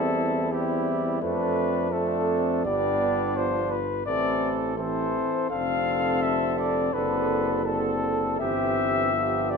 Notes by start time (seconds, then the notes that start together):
Already playing: E2 G3 C4 E4 A4
0.51 G3 C4 E4 G4
1.22 F2 A3 C4 D4 B4
1.91 A3 C4 D4 A4
2.64 G1 G3 B3 D4 D5
3.36 F3 C5
3.71 B4
4.06 A1 E3 C4 A4 D5
4.77 E3 C4 A4 C5
5.50 F1 D3 C4 A4 F5
6.22 E5
6.59 D5
6.94 F#1 D3 C4 A4 B4
7.65 D3 C4 A4
8.39 G1 E3 C4 G4 E5
9.13 F3 B3 G4
9.51 D5